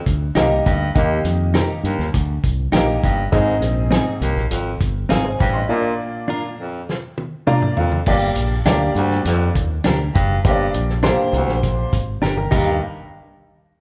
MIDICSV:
0, 0, Header, 1, 6, 480
1, 0, Start_track
1, 0, Tempo, 593472
1, 769, Time_signature, 4, 2, 24, 8
1, 11165, End_track
2, 0, Start_track
2, 0, Title_t, "Clean electric guitar"
2, 0, Program_c, 0, 27
2, 285, Note_on_c, 0, 63, 72
2, 295, Note_on_c, 0, 67, 77
2, 303, Note_on_c, 0, 70, 85
2, 393, Note_off_c, 0, 63, 0
2, 398, Note_off_c, 0, 67, 0
2, 402, Note_off_c, 0, 70, 0
2, 1245, Note_on_c, 0, 63, 74
2, 1254, Note_on_c, 0, 67, 85
2, 1261, Note_on_c, 0, 70, 87
2, 1353, Note_off_c, 0, 63, 0
2, 1357, Note_off_c, 0, 67, 0
2, 1361, Note_off_c, 0, 70, 0
2, 2202, Note_on_c, 0, 63, 84
2, 2209, Note_on_c, 0, 67, 98
2, 2217, Note_on_c, 0, 70, 95
2, 2311, Note_off_c, 0, 63, 0
2, 2315, Note_off_c, 0, 67, 0
2, 2319, Note_off_c, 0, 70, 0
2, 3159, Note_on_c, 0, 60, 86
2, 3167, Note_on_c, 0, 63, 73
2, 3173, Note_on_c, 0, 68, 82
2, 3270, Note_off_c, 0, 60, 0
2, 3274, Note_off_c, 0, 63, 0
2, 3277, Note_off_c, 0, 68, 0
2, 4118, Note_on_c, 0, 60, 80
2, 4126, Note_on_c, 0, 63, 87
2, 4134, Note_on_c, 0, 68, 96
2, 4229, Note_off_c, 0, 60, 0
2, 4233, Note_off_c, 0, 63, 0
2, 4237, Note_off_c, 0, 68, 0
2, 5079, Note_on_c, 0, 62, 75
2, 5089, Note_on_c, 0, 65, 84
2, 5095, Note_on_c, 0, 70, 78
2, 5189, Note_off_c, 0, 62, 0
2, 5194, Note_off_c, 0, 65, 0
2, 5198, Note_off_c, 0, 70, 0
2, 6042, Note_on_c, 0, 62, 84
2, 6049, Note_on_c, 0, 65, 81
2, 6057, Note_on_c, 0, 70, 91
2, 6151, Note_off_c, 0, 62, 0
2, 6154, Note_off_c, 0, 65, 0
2, 6158, Note_off_c, 0, 70, 0
2, 7001, Note_on_c, 0, 62, 81
2, 7012, Note_on_c, 0, 67, 93
2, 7019, Note_on_c, 0, 70, 91
2, 7110, Note_off_c, 0, 62, 0
2, 7115, Note_off_c, 0, 67, 0
2, 7119, Note_off_c, 0, 70, 0
2, 7961, Note_on_c, 0, 62, 88
2, 7970, Note_on_c, 0, 67, 90
2, 7977, Note_on_c, 0, 70, 83
2, 8069, Note_off_c, 0, 62, 0
2, 8074, Note_off_c, 0, 67, 0
2, 8077, Note_off_c, 0, 70, 0
2, 8920, Note_on_c, 0, 62, 90
2, 8928, Note_on_c, 0, 67, 94
2, 8937, Note_on_c, 0, 70, 91
2, 9028, Note_off_c, 0, 62, 0
2, 9033, Note_off_c, 0, 67, 0
2, 9037, Note_off_c, 0, 70, 0
2, 9882, Note_on_c, 0, 62, 80
2, 9888, Note_on_c, 0, 67, 82
2, 9896, Note_on_c, 0, 70, 89
2, 9989, Note_off_c, 0, 62, 0
2, 9993, Note_off_c, 0, 67, 0
2, 9996, Note_off_c, 0, 70, 0
2, 10118, Note_on_c, 0, 63, 81
2, 10123, Note_on_c, 0, 67, 87
2, 10130, Note_on_c, 0, 70, 92
2, 10266, Note_off_c, 0, 63, 0
2, 10268, Note_off_c, 0, 67, 0
2, 10272, Note_off_c, 0, 70, 0
2, 11165, End_track
3, 0, Start_track
3, 0, Title_t, "Upright piano"
3, 0, Program_c, 1, 0
3, 292, Note_on_c, 1, 58, 79
3, 292, Note_on_c, 1, 63, 77
3, 293, Note_on_c, 1, 67, 80
3, 293, Note_on_c, 1, 75, 94
3, 655, Note_off_c, 1, 58, 0
3, 655, Note_off_c, 1, 63, 0
3, 656, Note_off_c, 1, 67, 0
3, 656, Note_off_c, 1, 75, 0
3, 768, Note_on_c, 1, 67, 77
3, 768, Note_on_c, 1, 75, 83
3, 770, Note_on_c, 1, 51, 67
3, 770, Note_on_c, 1, 58, 74
3, 772, Note_on_c, 1, 63, 71
3, 1457, Note_off_c, 1, 51, 0
3, 1498, Note_off_c, 1, 67, 0
3, 1498, Note_off_c, 1, 75, 0
3, 1499, Note_off_c, 1, 58, 0
3, 1500, Note_off_c, 1, 63, 0
3, 2207, Note_on_c, 1, 58, 83
3, 2207, Note_on_c, 1, 63, 81
3, 2207, Note_on_c, 1, 67, 79
3, 2207, Note_on_c, 1, 75, 90
3, 2572, Note_off_c, 1, 58, 0
3, 2572, Note_off_c, 1, 75, 0
3, 2573, Note_off_c, 1, 63, 0
3, 2573, Note_off_c, 1, 67, 0
3, 2685, Note_on_c, 1, 75, 90
3, 2686, Note_on_c, 1, 60, 80
3, 2687, Note_on_c, 1, 44, 68
3, 2687, Note_on_c, 1, 63, 77
3, 2687, Note_on_c, 1, 68, 75
3, 3376, Note_off_c, 1, 44, 0
3, 3416, Note_off_c, 1, 75, 0
3, 3417, Note_off_c, 1, 60, 0
3, 3417, Note_off_c, 1, 63, 0
3, 3417, Note_off_c, 1, 68, 0
3, 4124, Note_on_c, 1, 77, 66
3, 4134, Note_on_c, 1, 68, 55
3, 4240, Note_off_c, 1, 77, 0
3, 4241, Note_on_c, 1, 80, 63
3, 4243, Note_on_c, 1, 72, 54
3, 4245, Note_off_c, 1, 68, 0
3, 4472, Note_off_c, 1, 80, 0
3, 4474, Note_off_c, 1, 72, 0
3, 4477, Note_on_c, 1, 84, 65
3, 4486, Note_on_c, 1, 75, 52
3, 4601, Note_on_c, 1, 65, 74
3, 4602, Note_on_c, 1, 58, 77
3, 4603, Note_on_c, 1, 46, 65
3, 4604, Note_on_c, 1, 62, 67
3, 4605, Note_on_c, 1, 74, 81
3, 4711, Note_off_c, 1, 84, 0
3, 4715, Note_off_c, 1, 75, 0
3, 5293, Note_off_c, 1, 46, 0
3, 5334, Note_off_c, 1, 65, 0
3, 5335, Note_off_c, 1, 58, 0
3, 5335, Note_off_c, 1, 62, 0
3, 5336, Note_off_c, 1, 74, 0
3, 6041, Note_on_c, 1, 65, 74
3, 6043, Note_on_c, 1, 74, 93
3, 6044, Note_on_c, 1, 62, 81
3, 6045, Note_on_c, 1, 82, 68
3, 6046, Note_on_c, 1, 58, 85
3, 6269, Note_off_c, 1, 82, 0
3, 6284, Note_on_c, 1, 77, 59
3, 6409, Note_off_c, 1, 65, 0
3, 6410, Note_off_c, 1, 62, 0
3, 6410, Note_off_c, 1, 74, 0
3, 6411, Note_off_c, 1, 58, 0
3, 6509, Note_off_c, 1, 77, 0
3, 6528, Note_on_c, 1, 62, 74
3, 6529, Note_on_c, 1, 43, 74
3, 6530, Note_on_c, 1, 58, 86
3, 6531, Note_on_c, 1, 67, 73
3, 6533, Note_on_c, 1, 74, 94
3, 6892, Note_off_c, 1, 62, 0
3, 6893, Note_off_c, 1, 58, 0
3, 6894, Note_off_c, 1, 67, 0
3, 6895, Note_off_c, 1, 74, 0
3, 7003, Note_on_c, 1, 57, 71
3, 7003, Note_on_c, 1, 67, 85
3, 7005, Note_on_c, 1, 62, 75
3, 7007, Note_on_c, 1, 74, 100
3, 7057, Note_off_c, 1, 57, 0
3, 7058, Note_on_c, 1, 58, 76
3, 7215, Note_off_c, 1, 43, 0
3, 7734, Note_off_c, 1, 67, 0
3, 7735, Note_off_c, 1, 62, 0
3, 7736, Note_off_c, 1, 74, 0
3, 7761, Note_off_c, 1, 58, 0
3, 8446, Note_on_c, 1, 58, 77
3, 8449, Note_on_c, 1, 43, 69
3, 8449, Note_on_c, 1, 62, 74
3, 8449, Note_on_c, 1, 67, 73
3, 8449, Note_on_c, 1, 72, 68
3, 8500, Note_off_c, 1, 72, 0
3, 8501, Note_on_c, 1, 74, 94
3, 8810, Note_off_c, 1, 58, 0
3, 8812, Note_off_c, 1, 62, 0
3, 8812, Note_off_c, 1, 67, 0
3, 8838, Note_off_c, 1, 74, 0
3, 8923, Note_on_c, 1, 67, 81
3, 8924, Note_on_c, 1, 57, 67
3, 8926, Note_on_c, 1, 62, 80
3, 8926, Note_on_c, 1, 72, 104
3, 8977, Note_off_c, 1, 57, 0
3, 8978, Note_on_c, 1, 58, 89
3, 9135, Note_off_c, 1, 43, 0
3, 9654, Note_off_c, 1, 67, 0
3, 9655, Note_off_c, 1, 62, 0
3, 9655, Note_off_c, 1, 72, 0
3, 9681, Note_off_c, 1, 58, 0
3, 9885, Note_on_c, 1, 82, 75
3, 10006, Note_on_c, 1, 79, 60
3, 10010, Note_on_c, 1, 70, 51
3, 10108, Note_off_c, 1, 82, 0
3, 10117, Note_on_c, 1, 63, 65
3, 10118, Note_on_c, 1, 67, 70
3, 10119, Note_on_c, 1, 39, 69
3, 10119, Note_on_c, 1, 58, 66
3, 10120, Note_off_c, 1, 79, 0
3, 10122, Note_off_c, 1, 70, 0
3, 10122, Note_on_c, 1, 75, 75
3, 10344, Note_off_c, 1, 63, 0
3, 10345, Note_off_c, 1, 39, 0
3, 10345, Note_off_c, 1, 58, 0
3, 10345, Note_off_c, 1, 67, 0
3, 10347, Note_off_c, 1, 75, 0
3, 11165, End_track
4, 0, Start_track
4, 0, Title_t, "Baritone saxophone"
4, 0, Program_c, 2, 67
4, 531, Note_on_c, 2, 43, 83
4, 722, Note_off_c, 2, 43, 0
4, 771, Note_on_c, 2, 39, 89
4, 962, Note_off_c, 2, 39, 0
4, 1492, Note_on_c, 2, 39, 72
4, 1683, Note_off_c, 2, 39, 0
4, 2450, Note_on_c, 2, 43, 77
4, 2642, Note_off_c, 2, 43, 0
4, 2687, Note_on_c, 2, 44, 78
4, 2879, Note_off_c, 2, 44, 0
4, 3402, Note_on_c, 2, 39, 74
4, 3596, Note_off_c, 2, 39, 0
4, 3643, Note_on_c, 2, 41, 80
4, 3837, Note_off_c, 2, 41, 0
4, 4367, Note_on_c, 2, 43, 86
4, 4560, Note_off_c, 2, 43, 0
4, 4604, Note_on_c, 2, 46, 84
4, 4797, Note_off_c, 2, 46, 0
4, 5329, Note_on_c, 2, 41, 68
4, 5521, Note_off_c, 2, 41, 0
4, 6289, Note_on_c, 2, 41, 76
4, 6481, Note_off_c, 2, 41, 0
4, 6528, Note_on_c, 2, 43, 80
4, 6720, Note_off_c, 2, 43, 0
4, 7249, Note_on_c, 2, 38, 83
4, 7440, Note_off_c, 2, 38, 0
4, 7491, Note_on_c, 2, 41, 89
4, 7681, Note_off_c, 2, 41, 0
4, 8207, Note_on_c, 2, 43, 89
4, 8398, Note_off_c, 2, 43, 0
4, 8452, Note_on_c, 2, 43, 84
4, 8641, Note_off_c, 2, 43, 0
4, 9170, Note_on_c, 2, 38, 72
4, 9360, Note_off_c, 2, 38, 0
4, 10129, Note_on_c, 2, 43, 87
4, 10351, Note_off_c, 2, 43, 0
4, 11165, End_track
5, 0, Start_track
5, 0, Title_t, "Fingered electric bass"
5, 0, Program_c, 3, 33
5, 51, Note_on_c, 3, 38, 97
5, 239, Note_off_c, 3, 38, 0
5, 290, Note_on_c, 3, 36, 85
5, 478, Note_off_c, 3, 36, 0
5, 535, Note_on_c, 3, 38, 88
5, 721, Note_off_c, 3, 38, 0
5, 772, Note_on_c, 3, 39, 104
5, 959, Note_off_c, 3, 39, 0
5, 1005, Note_on_c, 3, 41, 96
5, 1289, Note_off_c, 3, 41, 0
5, 1485, Note_on_c, 3, 43, 72
5, 1581, Note_off_c, 3, 43, 0
5, 1606, Note_on_c, 3, 39, 84
5, 1702, Note_off_c, 3, 39, 0
5, 1732, Note_on_c, 3, 38, 97
5, 1919, Note_off_c, 3, 38, 0
5, 1970, Note_on_c, 3, 36, 88
5, 2158, Note_off_c, 3, 36, 0
5, 2205, Note_on_c, 3, 34, 85
5, 2396, Note_off_c, 3, 34, 0
5, 2456, Note_on_c, 3, 31, 91
5, 2642, Note_off_c, 3, 31, 0
5, 2689, Note_on_c, 3, 32, 122
5, 2928, Note_off_c, 3, 32, 0
5, 2928, Note_on_c, 3, 34, 86
5, 3211, Note_off_c, 3, 34, 0
5, 3405, Note_on_c, 3, 36, 79
5, 3501, Note_off_c, 3, 36, 0
5, 3527, Note_on_c, 3, 34, 96
5, 3622, Note_off_c, 3, 34, 0
5, 3648, Note_on_c, 3, 32, 84
5, 3837, Note_off_c, 3, 32, 0
5, 3884, Note_on_c, 3, 31, 94
5, 4075, Note_off_c, 3, 31, 0
5, 4132, Note_on_c, 3, 32, 86
5, 4319, Note_off_c, 3, 32, 0
5, 4370, Note_on_c, 3, 33, 82
5, 4558, Note_off_c, 3, 33, 0
5, 6526, Note_on_c, 3, 31, 107
5, 6715, Note_off_c, 3, 31, 0
5, 6761, Note_on_c, 3, 34, 91
5, 6952, Note_off_c, 3, 34, 0
5, 6998, Note_on_c, 3, 38, 94
5, 7190, Note_off_c, 3, 38, 0
5, 7239, Note_on_c, 3, 43, 102
5, 7430, Note_off_c, 3, 43, 0
5, 7480, Note_on_c, 3, 41, 97
5, 7671, Note_off_c, 3, 41, 0
5, 7726, Note_on_c, 3, 39, 93
5, 7915, Note_off_c, 3, 39, 0
5, 7971, Note_on_c, 3, 38, 78
5, 8158, Note_off_c, 3, 38, 0
5, 8211, Note_on_c, 3, 30, 87
5, 8398, Note_off_c, 3, 30, 0
5, 8448, Note_on_c, 3, 31, 99
5, 8636, Note_off_c, 3, 31, 0
5, 8690, Note_on_c, 3, 34, 91
5, 8971, Note_off_c, 3, 34, 0
5, 9163, Note_on_c, 3, 36, 94
5, 9258, Note_off_c, 3, 36, 0
5, 9286, Note_on_c, 3, 34, 86
5, 9569, Note_off_c, 3, 34, 0
5, 9644, Note_on_c, 3, 32, 93
5, 9833, Note_off_c, 3, 32, 0
5, 9891, Note_on_c, 3, 31, 86
5, 10077, Note_off_c, 3, 31, 0
5, 10126, Note_on_c, 3, 39, 95
5, 10349, Note_off_c, 3, 39, 0
5, 11165, End_track
6, 0, Start_track
6, 0, Title_t, "Drums"
6, 52, Note_on_c, 9, 36, 72
6, 53, Note_on_c, 9, 42, 76
6, 133, Note_off_c, 9, 36, 0
6, 134, Note_off_c, 9, 42, 0
6, 285, Note_on_c, 9, 42, 76
6, 298, Note_on_c, 9, 38, 115
6, 365, Note_off_c, 9, 42, 0
6, 379, Note_off_c, 9, 38, 0
6, 534, Note_on_c, 9, 42, 78
6, 537, Note_on_c, 9, 36, 105
6, 615, Note_off_c, 9, 42, 0
6, 618, Note_off_c, 9, 36, 0
6, 772, Note_on_c, 9, 42, 77
6, 773, Note_on_c, 9, 36, 110
6, 853, Note_off_c, 9, 42, 0
6, 854, Note_off_c, 9, 36, 0
6, 1009, Note_on_c, 9, 42, 83
6, 1016, Note_on_c, 9, 38, 35
6, 1090, Note_off_c, 9, 42, 0
6, 1097, Note_off_c, 9, 38, 0
6, 1249, Note_on_c, 9, 42, 81
6, 1255, Note_on_c, 9, 38, 102
6, 1330, Note_off_c, 9, 42, 0
6, 1336, Note_off_c, 9, 38, 0
6, 1494, Note_on_c, 9, 42, 63
6, 1575, Note_off_c, 9, 42, 0
6, 1618, Note_on_c, 9, 38, 34
6, 1699, Note_off_c, 9, 38, 0
6, 1731, Note_on_c, 9, 42, 87
6, 1732, Note_on_c, 9, 36, 78
6, 1812, Note_off_c, 9, 42, 0
6, 1813, Note_off_c, 9, 36, 0
6, 1971, Note_on_c, 9, 36, 70
6, 1973, Note_on_c, 9, 42, 74
6, 2052, Note_off_c, 9, 36, 0
6, 2054, Note_off_c, 9, 42, 0
6, 2207, Note_on_c, 9, 42, 76
6, 2221, Note_on_c, 9, 38, 126
6, 2288, Note_off_c, 9, 42, 0
6, 2302, Note_off_c, 9, 38, 0
6, 2455, Note_on_c, 9, 36, 100
6, 2457, Note_on_c, 9, 42, 75
6, 2536, Note_off_c, 9, 36, 0
6, 2538, Note_off_c, 9, 42, 0
6, 2691, Note_on_c, 9, 36, 117
6, 2691, Note_on_c, 9, 42, 75
6, 2771, Note_off_c, 9, 36, 0
6, 2772, Note_off_c, 9, 42, 0
6, 2927, Note_on_c, 9, 42, 81
6, 2934, Note_on_c, 9, 38, 37
6, 3008, Note_off_c, 9, 42, 0
6, 3014, Note_off_c, 9, 38, 0
6, 3168, Note_on_c, 9, 42, 90
6, 3174, Note_on_c, 9, 38, 100
6, 3248, Note_off_c, 9, 42, 0
6, 3255, Note_off_c, 9, 38, 0
6, 3410, Note_on_c, 9, 42, 62
6, 3491, Note_off_c, 9, 42, 0
6, 3532, Note_on_c, 9, 38, 35
6, 3613, Note_off_c, 9, 38, 0
6, 3646, Note_on_c, 9, 42, 100
6, 3727, Note_off_c, 9, 42, 0
6, 3887, Note_on_c, 9, 36, 70
6, 3888, Note_on_c, 9, 42, 80
6, 3968, Note_off_c, 9, 36, 0
6, 3969, Note_off_c, 9, 42, 0
6, 4123, Note_on_c, 9, 42, 81
6, 4137, Note_on_c, 9, 38, 119
6, 4204, Note_off_c, 9, 42, 0
6, 4217, Note_off_c, 9, 38, 0
6, 4371, Note_on_c, 9, 36, 107
6, 4371, Note_on_c, 9, 42, 70
6, 4452, Note_off_c, 9, 36, 0
6, 4452, Note_off_c, 9, 42, 0
6, 5575, Note_on_c, 9, 38, 57
6, 5656, Note_off_c, 9, 38, 0
6, 5805, Note_on_c, 9, 48, 65
6, 5886, Note_off_c, 9, 48, 0
6, 6044, Note_on_c, 9, 47, 94
6, 6125, Note_off_c, 9, 47, 0
6, 6165, Note_on_c, 9, 45, 68
6, 6246, Note_off_c, 9, 45, 0
6, 6284, Note_on_c, 9, 43, 92
6, 6365, Note_off_c, 9, 43, 0
6, 6403, Note_on_c, 9, 43, 75
6, 6484, Note_off_c, 9, 43, 0
6, 6520, Note_on_c, 9, 49, 96
6, 6526, Note_on_c, 9, 36, 114
6, 6601, Note_off_c, 9, 49, 0
6, 6607, Note_off_c, 9, 36, 0
6, 6758, Note_on_c, 9, 42, 82
6, 6839, Note_off_c, 9, 42, 0
6, 7000, Note_on_c, 9, 42, 98
6, 7007, Note_on_c, 9, 38, 110
6, 7081, Note_off_c, 9, 42, 0
6, 7087, Note_off_c, 9, 38, 0
6, 7248, Note_on_c, 9, 42, 65
6, 7328, Note_off_c, 9, 42, 0
6, 7368, Note_on_c, 9, 38, 35
6, 7449, Note_off_c, 9, 38, 0
6, 7485, Note_on_c, 9, 42, 93
6, 7565, Note_off_c, 9, 42, 0
6, 7726, Note_on_c, 9, 42, 78
6, 7727, Note_on_c, 9, 36, 68
6, 7806, Note_off_c, 9, 42, 0
6, 7808, Note_off_c, 9, 36, 0
6, 7958, Note_on_c, 9, 42, 77
6, 7972, Note_on_c, 9, 38, 127
6, 8039, Note_off_c, 9, 42, 0
6, 8053, Note_off_c, 9, 38, 0
6, 8212, Note_on_c, 9, 42, 74
6, 8214, Note_on_c, 9, 36, 106
6, 8292, Note_off_c, 9, 42, 0
6, 8295, Note_off_c, 9, 36, 0
6, 8449, Note_on_c, 9, 42, 84
6, 8451, Note_on_c, 9, 36, 120
6, 8530, Note_off_c, 9, 42, 0
6, 8532, Note_off_c, 9, 36, 0
6, 8688, Note_on_c, 9, 42, 78
6, 8769, Note_off_c, 9, 42, 0
6, 8812, Note_on_c, 9, 38, 36
6, 8893, Note_off_c, 9, 38, 0
6, 8929, Note_on_c, 9, 42, 92
6, 8935, Note_on_c, 9, 38, 108
6, 9009, Note_off_c, 9, 42, 0
6, 9016, Note_off_c, 9, 38, 0
6, 9171, Note_on_c, 9, 42, 57
6, 9252, Note_off_c, 9, 42, 0
6, 9292, Note_on_c, 9, 38, 36
6, 9373, Note_off_c, 9, 38, 0
6, 9409, Note_on_c, 9, 36, 73
6, 9409, Note_on_c, 9, 42, 87
6, 9490, Note_off_c, 9, 36, 0
6, 9490, Note_off_c, 9, 42, 0
6, 9648, Note_on_c, 9, 36, 78
6, 9650, Note_on_c, 9, 42, 83
6, 9729, Note_off_c, 9, 36, 0
6, 9731, Note_off_c, 9, 42, 0
6, 9894, Note_on_c, 9, 38, 62
6, 9975, Note_off_c, 9, 38, 0
6, 10005, Note_on_c, 9, 48, 56
6, 10086, Note_off_c, 9, 48, 0
6, 10125, Note_on_c, 9, 49, 81
6, 10126, Note_on_c, 9, 36, 103
6, 10206, Note_off_c, 9, 49, 0
6, 10207, Note_off_c, 9, 36, 0
6, 11165, End_track
0, 0, End_of_file